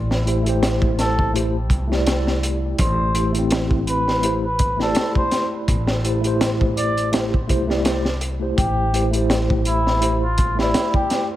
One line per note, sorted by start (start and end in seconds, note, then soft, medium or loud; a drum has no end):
0.00 1.70 A1 loud
0.00 0.21 A3 medium
0.00 0.22 E4 medium
0.00 0.23 G4 medium
0.00 0.24 D5 medium
0.11 snare medium
0.25 0.41 A3 medium
0.25 0.41 E4 medium
0.25 0.42 G4 medium
0.25 0.42 C5 medium
0.25 closed hi-hat medium
0.43 1.29 A3 medium
0.43 1.30 E4 medium
0.43 1.31 G4 medium
0.43 closed hi-hat soft
0.49 1.32 C5 loud
0.63 snare loud
0.63 closed hi-hat medium
0.82 kick loud
0.99 1.32 A4 loud
0.99 snare soft
0.99 closed hi-hat medium
1.19 kick medium
1.33 1.54 A3 medium
1.33 1.54 E4 medium
1.33 1.55 G4 medium
1.33 1.55 C5 medium
1.33 closed hi-hat medium
1.70 2.76 C2 medium
1.70 kick medium
1.70 closed hi-hat medium
1.87 3.10 A3 medium
1.87 3.11 E4 medium
1.92 3.12 G4 medium
1.92 3.13 D5 medium
1.92 snare soft
2.06 snare loud
2.06 closed hi-hat medium
2.27 snare soft
2.43 closed hi-hat medium
2.79 4.93 A1 loud
2.79 3.30 C5 medium
2.79 kick loud
2.79 closed hi-hat loud
3.14 3.30 A3 medium
3.14 3.30 E4 medium
3.14 3.31 G4 medium
3.14 3.31 C5 medium
3.14 closed hi-hat medium
3.33 4.19 A3 medium
3.33 4.19 E4 medium
3.33 closed hi-hat soft
3.37 4.22 C4 loud
3.37 4.21 G4 medium
3.51 snare loud
3.51 closed hi-hat medium
3.71 kick medium
3.87 4.38 B4 loud
3.87 closed hi-hat medium
4.08 snare soft
4.22 4.43 A3 medium
4.22 4.44 E4 medium
4.22 4.44 G4 medium
4.22 4.45 C5 loud
4.22 closed hi-hat medium
4.45 4.76 B4 medium
4.59 kick medium
4.59 closed hi-hat medium
4.77 5.99 A3 medium
4.77 6.00 E4 medium
4.77 5.12 A4 medium
4.77 snare soft
4.81 6.01 G4 medium
4.81 6.02 D5 loud
4.95 snare loud
4.95 closed hi-hat medium
5.15 5.49 C5 medium
5.15 kick medium
5.31 snare medium
5.31 closed hi-hat medium
5.68 7.50 A1 medium
5.68 kick loud
5.68 closed hi-hat medium
5.87 snare medium
6.03 6.19 A3 medium
6.03 6.19 E4 medium
6.03 6.20 G4 medium
6.03 6.20 C5 medium
6.03 closed hi-hat medium
6.21 7.07 A3 medium
6.21 7.08 E4 medium
6.21 closed hi-hat soft
6.25 7.09 G4 medium
6.25 7.10 C5 loud
6.41 snare loud
6.41 closed hi-hat medium
6.61 kick medium
6.77 7.10 D5 loud
6.77 closed hi-hat medium
6.97 closed hi-hat soft
7.12 7.32 A3 medium
7.12 7.33 E4 medium
7.12 7.33 G4 medium
7.12 7.34 C5 medium
7.12 snare loud
7.12 closed hi-hat medium
7.34 kick medium
7.47 8.55 C2 medium
7.47 7.63 A3 medium
7.47 7.64 E4 medium
7.47 7.64 G4 medium
7.47 7.65 C5 medium
7.47 kick medium
7.47 closed hi-hat medium
7.67 7.80 A3 medium
7.67 7.81 E4 medium
7.67 7.81 G4 medium
7.67 7.82 D5 loud
7.67 snare soft
7.84 8.04 A3 medium
7.84 8.05 E4 medium
7.84 8.05 G4 medium
7.84 8.06 C5 medium
7.84 snare loud
7.84 closed hi-hat medium
8.05 snare soft
8.21 closed hi-hat medium
8.40 8.89 A3 medium
8.40 8.89 E4 medium
8.40 8.90 G4 medium
8.40 8.90 C5 medium
8.58 10.71 A1 medium
8.58 9.08 G4 medium
8.58 kick loud
8.58 closed hi-hat medium
8.93 9.08 A3 medium
8.93 9.09 E4 medium
8.93 9.09 G4 medium
8.93 9.10 C5 medium
8.93 closed hi-hat medium
9.11 9.97 A3 medium
9.11 9.98 E4 medium
9.11 closed hi-hat soft
9.15 9.99 G4 medium
9.15 10.00 C5 medium
9.30 snare loud
9.30 closed hi-hat medium
9.50 kick medium
9.65 10.17 E4 loud
9.65 closed hi-hat medium
9.87 snare soft
10.00 10.21 A3 medium
10.00 10.22 E4 medium
10.00 10.22 G4 medium
10.00 10.23 C5 loud
10.00 closed hi-hat medium
10.24 10.55 F4 medium
10.38 kick medium
10.38 closed hi-hat medium
10.55 11.36 A3 medium
10.55 11.36 E4 medium
10.59 10.91 E4 medium
10.59 11.36 G4 medium
10.59 11.36 D5 loud
10.59 snare soft
10.74 snare loud
10.74 closed hi-hat medium
10.94 11.27 G4 medium
10.94 kick loud
11.10 snare medium
11.10 closed hi-hat medium